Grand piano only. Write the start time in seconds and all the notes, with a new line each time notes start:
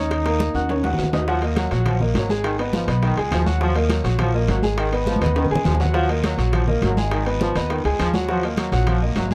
Already playing: C#4 C#5 C#6
0.26 A#3 A#4 A#5
0.55 F#4 F#5 F#6
0.70 C#4 C#5 C#6
0.84 F#4 F#5 F#6
1.13 D#4 D#5 D#6
1.28 F#3 F#4 F#5
1.42 A#3 A#4 D#5
1.71 F#3 F#4 F#5
2.01 A#3 A#4 D#5
2.30 G#3 G#4 G#5
2.59 B3 B4 D#5
2.88 B3 B4 D#5
3.17 G#3 G#4 G#5
3.46 F#3 F#4 F#5
3.61 F#3 F#4 F#5
3.75 A#3 A#4 D#5
4.04 F#3 F#4 F#5
4.34 A#3 A#4 D#5
4.63 G#3 G#4 G#5
4.93 B3 B4 D#5
5.21 B3 B4 D#5
5.51 G#3 G#4 G#5
5.80 F#3 F#4 F#5
5.94 F#3 F#4 F#5
6.09 A#3 A#4 D#5
6.38 F#3 F#4 F#5
6.67 A#3 A#4 D#5
6.97 G#3 G#4 G#5
7.26 B3 B4 D#5
7.55 B3 B4 D#5
7.85 G#3 G#4 G#5
8.14 F#3 F#4 F#5
8.29 F#3 F#4 F#5
8.44 A#3 A#4 D#5
8.73 F#3 F#4 F#5
9.02 A#3 A#4 D#5
9.31 G#3